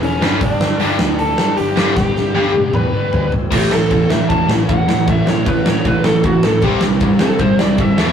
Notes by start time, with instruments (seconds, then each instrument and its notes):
0.02 picked electric bass E1, overdriven electric guitar E3 B3 E4 G#4, lead electric guitar C#4 C#5, open hi-hat
0.20 picked electric bass G1, overdriven electric guitar G2 D3 G3 B3 D4 G4, lead electric guitar C#4, snare
0.25 lead electric guitar C#5
0.41 picked electric bass G1, lead electric guitar D4 D5, kick, open hi-hat
0.60 picked electric bass G1, snare
0.79 picked electric bass G1, overdriven electric guitar G2 D3 G3 B3 D4 G4, open hi-hat
0.98 picked electric bass D2, snare
1.18 picked electric bass D2, lead electric guitar A4 A5, open hi-hat
1.37 picked electric bass G2, overdriven electric guitar G3 B3 D4 G4, snare
1.57 picked electric bass G1, lead electric guitar G4 G5, open hi-hat
1.76 overdriven electric guitar G2 D3 G3 B3 D4 G4, snare
1.96 picked electric bass G1, lead electric guitar G4 G5, kick, snare
2.14 picked electric bass G1, snare
2.34 picked electric bass G1, overdriven electric guitar G2 D3 G3 B3 D4 G4
2.54 picked electric bass G1, high tom
2.73 picked electric bass E2, lead electric guitar B4 B5, mid tom
2.92 picked electric bass G1, overdriven electric guitar G3 B3 D4 G4
3.11 picked electric bass G1, floor tom
3.31 picked electric bass G1, floor tom
3.51 picked electric bass A1, overdriven electric guitar A2 E3 A3 C#4 E4, lead electric guitar G4, kick, crash
3.70 overdriven electric guitar A2 E3, lead electric guitar A4, snare
3.90 picked electric bass E2, overdriven electric guitar A2 E3, kick, ride
4.09 overdriven electric guitar A2 E3 A3 C#4 E4, picked electric bass A2, lead electric guitar E5, snare
4.13 overdriven electric guitar A2
4.29 picked electric bass E1, overdriven electric guitar A2 E3, lead electric guitar A5, kick, ride
4.49 picked electric bass A1, overdriven electric guitar A2 E3, snare
4.69 picked electric bass E1, overdriven electric guitar A2 E3, lead electric guitar F#5, kick, ride
4.88 picked electric bass A1, overdriven electric guitar A2 E3, snare
5.07 picked electric bass A1, overdriven electric guitar A2 E3 A3 C#4, lead electric guitar E5, kick, ride
5.11 overdriven electric guitar E4
5.26 picked electric bass A1, overdriven electric guitar A2 E3, lead electric guitar C#5, snare
5.46 picked electric bass A1, overdriven electric guitar A2 E3, lead electric guitar B4, kick, ride
5.65 picked electric bass A1, overdriven electric guitar A2 E3 A3 C#4 E4, lead electric guitar C#5, snare
5.85 picked electric bass F#1, overdriven electric guitar A2 E3, lead electric guitar B4, kick, ride
6.04 picked electric bass A1, overdriven electric guitar A2 E3, lead electric guitar A4, snare
6.23 picked electric bass A1, overdriven electric guitar A2 E3, lead electric guitar F#4, kick, ride
6.43 picked electric bass A1, overdriven electric guitar A2 E3, lead electric guitar A4, snare
6.62 picked electric bass C2, overdriven electric guitar C3 E3 G3 C4, lead electric guitar G4, kick, ride
6.66 overdriven electric guitar E4
6.81 overdriven electric guitar C3 G3, snare
7.00 picked electric bass G2, overdriven electric guitar C3 G3, kick, ride
7.19 picked electric bass C3, overdriven electric guitar C3 E3 G3 C4 E4, lead electric guitar A4, snare
7.24 overdriven electric guitar C3
7.39 picked electric bass G1, overdriven electric guitar C3 G3, lead electric guitar C5, kick, ride
7.59 picked electric bass C2, overdriven electric guitar C3 G3, lead electric guitar D5, snare
7.78 picked electric bass G1, overdriven electric guitar C3 G3, lead electric guitar E5, kick, ride
7.96 picked electric bass E1, overdriven electric guitar E2 B2 E3 G#3 B3 E4, lead electric guitar E5, snare